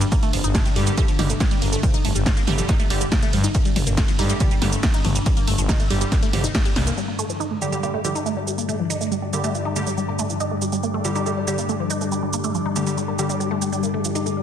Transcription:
Already playing: G2 D3
0.01 G3, closed hi-hat, shaker
0.12 A#3, kick, closed hi-hat, ride, shaker
0.23 A3, closed hi-hat, shaker
0.33 G1 F3, open hi-hat
0.44 G1 D#4, closed hi-hat, shaker
0.55 A3, kick, snare, closed hi-hat, mid tom, ride, shaker
0.65 G3, closed hi-hat, shaker
0.76 G2 D3 G3 G4, open hi-hat
0.87 D3 G3 A#3 G4, closed hi-hat, shaker
0.97 D3 G3 A3 G4, kick, closed hi-hat, ride, shaker
1.08 F3, closed hi-hat, shaker
1.19 G1 D3 G3 D#4 G4, snare, open hi-hat, mid tom
1.30 A3, closed hi-hat, shaker
1.40 G3, kick, snare, closed hi-hat, ride, shaker
1.51 G3, closed hi-hat, shaker
1.62 G1 A#3, open hi-hat
1.73 A3, closed hi-hat, shaker
1.83 F3, kick, closed hi-hat, mid tom, ride, shaker
1.94 D#4, closed hi-hat, shaker
2.05 G1 A3, open hi-hat
2.15 G1 G3, closed hi-hat, shaker
2.26 G3, kick, snare, closed hi-hat, ride, shaker
2.37 A#3, closed hi-hat, shaker
2.47 G1 D3 G3 A3 G4, open hi-hat, mid tom
2.58 D3 F3 G3 G4, closed hi-hat, shaker
2.69 D#4, kick, snare, closed hi-hat, ride, shaker
2.80 A3, closed hi-hat, shaker
2.90 G1 D3 G3 G4, open hi-hat
3.01 G3, closed hi-hat, shaker
3.12 A#3, kick, snare, closed hi-hat, mid tom, ride, shaker
3.22 A3, closed hi-hat, shaker
3.33 G2 F3, open hi-hat
3.44 D#4, closed hi-hat, shaker
3.55 A3, kick, closed hi-hat, ride, shaker
3.65 G3, closed hi-hat, shaker
3.76 G1 G3, open hi-hat, mid tom
3.87 G1 A#3, closed hi-hat, shaker
3.97 A3, kick, snare, closed hi-hat, ride, shaker
4.08 F3, closed hi-hat, shaker
4.19 G2 D3 G3 D#4 G4, open hi-hat
4.30 D3 G3 A3 G4, closed hi-hat, shaker
4.40 D3 G3 G4, kick, closed hi-hat, mid tom, ride, shaker
4.51 G3, closed hi-hat, shaker
4.62 G1 D3 G3 A#3 G4, snare, open hi-hat
4.72 A3, closed hi-hat, shaker
4.83 F3, kick, snare, closed hi-hat, ride, shaker
4.94 D#4, closed hi-hat, shaker
5.05 G1 A3, open hi-hat, mid tom
5.15 G3, closed hi-hat, shaker
5.26 G3, kick, closed hi-hat, ride, shaker
5.37 A#3, closed hi-hat, shaker
5.47 G1 A3, open hi-hat
5.58 G1 F3, closed hi-hat, shaker
5.69 D#4, kick, snare, closed hi-hat, mid tom, ride, shaker
5.80 A3, closed hi-hat, shaker
5.90 G1 D3 G3 G4, open hi-hat
6.01 D3 G3 G4, closed hi-hat, shaker
6.12 A#3, kick, snare, closed hi-hat, ride, shaker
6.22 A3, closed hi-hat, shaker
6.33 G1 D3 F3 G3 G4, open hi-hat, mid tom
6.44 D#4, closed hi-hat, shaker
6.55 A3, kick, snare, closed hi-hat, ride, shaker
6.65 G3, closed hi-hat, shaker
6.76 C2 G3, snare, open hi-hat
6.87 A#3, closed hi-hat, shaker
6.97 G2 D3 G3, shaker
7.08 A#3
7.14 G4
7.19 A3, shaker
7.29 F3, shaker
7.40 D#4, shaker
7.51 A3
7.62 D3 G3 G4, shaker
7.66 D6
7.72 D3 G3 G4, shaker
7.82 D3 G3 A#3 G4 D5, shaker
7.94 A3
8.04 D3 F3 G3 G4, shaker
8.15 D#4, shaker
8.26 A3, shaker
8.37 G3
8.47 G3, shaker
8.58 A#3, shaker
8.68 A3, shaker
8.79 F3
8.90 D#4, shaker
9.01 A3, shaker
9.11 G3, shaker
9.22 G3
9.33 D3 G3 A#3 G4, shaker
9.44 D3 G3 A3 G4, shaker
9.54 F3, shaker
9.65 D#4
9.76 D3 G3 A3 G4, shaker
9.87 G3, shaker
9.97 G3, shaker
10.08 A#3
10.19 A3, shaker
10.30 F3, shaker
10.40 D#4, shaker
10.51 A3
10.62 G3, shaker
10.72 G3, shaker
10.83 A#3, shaker
10.94 A3
11.05 D3 F3 G3 G4, shaker
11.15 D3 G3 D#4 G4, shaker
11.26 D3 G3 A3 G4, shaker
11.37 G3
11.47 D3 G3 G4, shaker
11.58 A#3, shaker
11.69 A3, shaker
11.80 F3
11.90 D#4, shaker
12.01 A3, shaker
12.12 G3, shaker
12.23 G3
12.33 A#3, shaker
12.44 A3, shaker
12.55 F3, shaker
12.66 D#4
12.76 D3 G3 A3 G4, shaker
12.87 D3 G3 G4, shaker
12.97 G3, shaker
13.08 A#3
13.19 D3 G3 G4, shaker
13.30 G3, shaker
13.40 G3, shaker
13.51 A3
13.62 G4, shaker
13.72 G3, shaker
13.83 A#3, shaker
13.94 A3
14.05 F3, shaker
14.15 D#4, shaker
14.26 A3, shaker
14.37 G3

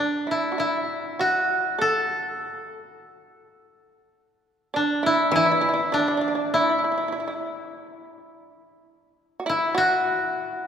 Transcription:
Already playing: D4
0.27 E4
0.31 E4
0.52 F#4
0.58 E4
1.19 F#4
1.79 A4
4.74 D4
5.03 E4
5.32 E3 E4
5.36 E4
5.46 E4
5.52 E4
5.61 E4
5.69 E4
5.74 E4
5.92 D4
5.99 D4
6.08 D4
6.17 D4
6.21 D4
6.28 D4
6.35 D4
6.54 E4
6.61 E4
6.69 E4
6.79 E4
6.84 E4
6.92 E4
6.98 E4
7.08 E4
7.12 E4
7.20 E4
7.28 E4
9.40 F#4
9.46 E4
9.75 F#4

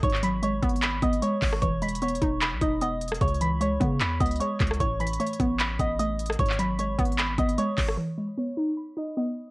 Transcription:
0.03 G#1 G#2 C#5 C#6, kick, closed hi-hat
0.10 clap, closed hi-hat
0.16 closed hi-hat
0.23 F#3 B5 B6, closed hi-hat
0.43 G#3 C#5 C#6, closed hi-hat
0.63 G#1 B3, kick, closed hi-hat
0.69 closed hi-hat
0.76 closed hi-hat
0.82 B5 B6, clap, closed hi-hat
1.02 G#1 B3 D#5 D#6, kick, closed hi-hat
1.13 closed hi-hat
1.22 G#3 C#5 C#6, closed hi-hat
1.42 G#1, kick, clap, open hi-hat
1.53 cross-stick
1.62 E1 E3 C#5 C#6, kick, closed hi-hat
1.82 G#3 B5 B6, closed hi-hat
1.89 closed hi-hat
1.95 closed hi-hat
2.02 B3 C#5 C#6, closed hi-hat
2.08 closed hi-hat
2.15 closed hi-hat
2.21 E1 D#4, kick, closed hi-hat
2.41 B5 B6, clap, closed hi-hat
2.52 B1
2.61 E1 D#4 D#5 D#6, kick, closed hi-hat
2.81 B3 D#5 D#6, closed hi-hat
3.01 closed hi-hat
3.08 cross-stick, closed hi-hat
3.14 closed hi-hat
3.21 C#2 C#3 C#5 C#6, kick, closed hi-hat
3.28 closed hi-hat
3.34 closed hi-hat
3.41 E3 B5 B6, closed hi-hat
3.61 G#3 C#5 C#6, closed hi-hat
3.80 C#3 B3, kick, closed hi-hat
4.00 E2 B5 B6, clap, closed hi-hat
4.20 C#2 B3 D#5 D#6, kick, closed hi-hat
4.26 closed hi-hat
4.31 closed hi-hat
4.36 closed hi-hat
4.40 G#3 C#5 C#6, closed hi-hat
4.60 C#2, kick, clap, closed hi-hat
4.67 cross-stick, closed hi-hat
4.73 closed hi-hat
4.80 A1 A2 C#5 C#6, kick, closed hi-hat
5.00 E3 B5 B6, closed hi-hat
5.07 closed hi-hat
5.13 closed hi-hat
5.20 A3 C#5 C#6, closed hi-hat
5.26 closed hi-hat
5.33 closed hi-hat
5.40 A1 B3, kick, closed hi-hat
5.59 B5 B6, clap, closed hi-hat
5.79 A1 B3 D#5 D#6, kick, closed hi-hat
5.99 A3 D#5 D#6, closed hi-hat
6.19 closed hi-hat
6.26 cross-stick, closed hi-hat
6.32 closed hi-hat
6.39 G#1 G#2 C#5 C#6, kick, closed hi-hat
6.46 clap, closed hi-hat
6.52 closed hi-hat
6.59 F#3 B5 B6, closed hi-hat
6.79 G#3 C#5 C#6, closed hi-hat
6.98 G#1 B3, kick, closed hi-hat
7.05 closed hi-hat
7.12 closed hi-hat
7.18 B5 B6, clap, closed hi-hat
7.38 G#1 B3 D#5 D#6, kick, closed hi-hat
7.49 closed hi-hat
7.58 G#3 C#5 C#6, closed hi-hat
7.78 G#1, kick, clap, open hi-hat
7.89 cross-stick
7.97 E3 C#5
8.18 G#3 B5 B6
8.38 B3 C#5 C#6
8.57 D#4
8.77 B5 B6
8.97 D#4 D#5 D#6
9.17 B3 D#5 D#6

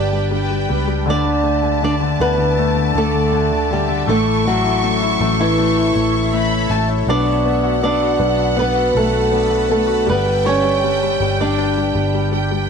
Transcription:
Already playing: G1 G3 B3 D4 G4 B4 D5 G5 A5 B5
0.12 G3
0.31 G3 D4 G5
0.50 G3
0.69 C#2 G3 B3
0.87 G3
1.06 D2 D3 D4 A4 D5 E5 A5 D6
1.10 D5
1.25 D3
1.43 D3 A3
1.63 D3
1.82 D3 D4 D5
2.01 D3
2.19 D2 D3 B3 E4 B4
2.38 D3
2.57 A3 D4
2.77 D3
2.95 D2 D3 A3 A4
3.14 D3
3.33 D3 D4
3.52 D3
3.70 D3 G3 A3 G4
3.89 D3
4.07 A1 A2 A3 A4 C#5 C#6
4.26 E4
4.45 F#3 A3 F#4
4.64 E4
4.83 A3 C#4
5.02 E4
5.20 A1 A3 E4
5.40 E3 E4
5.58 A3 C#4
5.78 E4
5.95 A1 A3
6.15 E4
6.33 A3 C#4 B5
6.52 E4
6.70 A1 A3 A5
6.89 E4
7.07 B1 B2 B3 D4 B4 D5 F#5 A5 B5
7.26 F#4
7.45 A3 B3
7.63 F#4
7.83 B3 D4 D5
8.01 F#4
8.19 B1 B3 F#4
8.37 F#4
8.56 B3 D4 B4
8.61 B3
8.74 F#4
8.92 B1 A3 B3
8.97 A3 A4
9.13 F#4
9.31 B3 D4
9.50 F#4
9.69 A3 B3 A4
9.74 A3
9.87 F#4
10.06 G1 G3 G4 B4 G5
10.12 B3
10.25 G3
10.45 G3 B3 C#4 C#5
10.64 G3
10.84 G3
11.03 G3
11.20 G1 G3
11.40 G3 D4 D5
11.58 D4
11.77 G3
11.95 G1 G3 B3
12.14 G3
12.32 G3 D4 G5
12.51 G3

